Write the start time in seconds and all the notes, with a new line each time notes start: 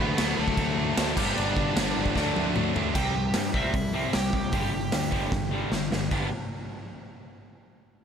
Already playing: D2 D3 F#3 A3 D4
0.00 D3 F#3 A3 B3 D4 B4
0.15 D2 D3 F#3 A3 D4, snare, crash
0.20 A3 D4
0.38 D2 D3 F#3 A3 D4 A4
0.48 kick
0.57 D2 D3 F#3 A3 D4, kick, crash
0.77 D2 D3 F#3 A3 D4
0.97 D2 D3 F#3 A3 D4, snare, crash
1.16 G1 G2 D3 G3 B3 D4 G4, kick, crash
1.37 G1 G2 D3 G3 B3 D4 D5, crash
1.57 G1 G2 D3 G3 B3 D4, kick
1.75 G1 G2 D3 G3 B3 D4, snare, crash
1.97 G1 G2 D3 G3 B3 D4
2.06 kick
2.15 D2 D3 F#3 A3 D4, kick, snare
2.36 D2 D3 F#3 A3 D4, high tom
2.56 D2 D3 F#3 A3 D4, mid tom
2.74 D2 D3 F#3 A3 D4, floor tom
2.95 C2 C3 G3 C4 G4 G5, kick, crash
3.15 C2 C3 G3
3.34 G2 C3 G3, snare, open hi-hat
3.54 C2 C3 G3 C4 E4 E5, kick
3.74 C2 C3 G3, kick, open hi-hat
3.94 C3 G3 C4
4.13 C2 C3 G3 G4 G5, snare, open hi-hat
4.33 C2 C3 G3, kick
4.52 G1 G2 D3 G3 G4 G5, kick, open hi-hat
4.73 G1 G2 D3
4.92 D2 G2 D3, snare, open hi-hat
5.11 G1 G2 D3 G3, kick
5.32 G1 G2 D3, kick, snare
5.53 G2 D3 G3
5.72 G1 G2 D3, snare
5.92 G1 G2 D3, snare
6.11 G1 G2 D3 G3 B3 D4 G4, kick, splash